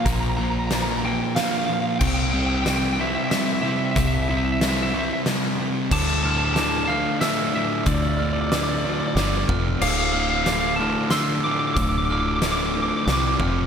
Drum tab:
CC |------|x-----|------|x-----|
HH |x-x-x-|--x-x-|x-x-x-|--x-x-|
SD |--o-o-|--o-o-|--o-o-|--o-o-|
BD |o-----|o-----|o-----|o-----|

CC |------|x-----|------|
HH |x-x-x-|--x-x-|x-x-x-|
SD |--o-o-|--o-o-|--o-o-|
BD |o----o|------|o----o|